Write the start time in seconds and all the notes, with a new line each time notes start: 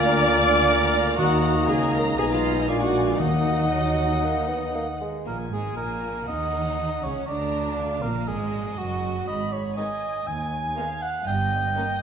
Already playing: D2 D3 A#3 F4 D5 F5 G#5 A#5 D6
0.18 F5 A#5
0.44 G#5
0.68 F#5 A#5
0.93 F5
1.18 D#2 D#3 A#3 D#4 F#4 D#5 F#5 A#5
1.43 F#5
1.68 C#2 C#3 G#4 F5 G#5
1.93 A#4 A#5
2.18 B1 B2 G#3 B3 D#4 G#4 D#5 G#5
2.30 F4 F5
2.55 D#4 D#5
2.67 A#1 A#2 G#3 A#3 D4 F4 D5 F5 G#5
2.81 F#4 F#5
3.07 F4 F5
3.19 D#2 D#3 F#3 A#3 D#4 D#5 F#5
3.72 F#3
4.24 A#3
4.49 B3
4.75 A#3
5.01 G#3
5.26 A#1 A#2 A#3 A#4 G#5
5.51 G#1 G#2 G#3 G#4
5.77 A#1 A#2 A#3 A#4
6.28 D#2 D#3 D#4 D#5 F#5
7.03 C#2 C#3 C#4 C#5
7.27 D2 D3 D4 D5 A#5
7.78 F5
8.02 A#1 A#2 A#3 A#4
8.27 G#1 G#2 G#3 G#4 D#5
8.77 F#1 F#2 F#3 F#4
9.27 G#1 G#2 D#5 B5
9.52 C#5
9.76 D#3 G#3 B3 D#4 D#5 G#5
10.27 D#2 G#5
10.76 D#3 G#3 B3 D#4 F5
11.02 F#5
11.27 G1 G2 D#5 G5
11.75 D#3 A#3 C#4 D#4 D#5